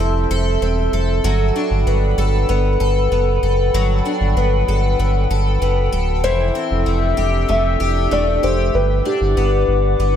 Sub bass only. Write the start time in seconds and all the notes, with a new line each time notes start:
0.00 F1
0.30 F1
0.62 E1
0.93 F1
1.24 G1
1.71 G1
1.86 G1
2.17 G1
2.49 G1
2.80 G1
3.11 F#1
3.42 F#1
3.74 G1
4.21 G1
4.36 G1
4.68 G1
4.99 G1
5.30 G1
5.61 F#1
5.93 D1
6.24 F1
6.71 F1
6.87 F1
7.18 F1
7.49 F1
7.80 F1
8.11 E1
8.43 F1
8.74 G1
9.21 G1
9.37 G1
9.68 G1
9.99 G1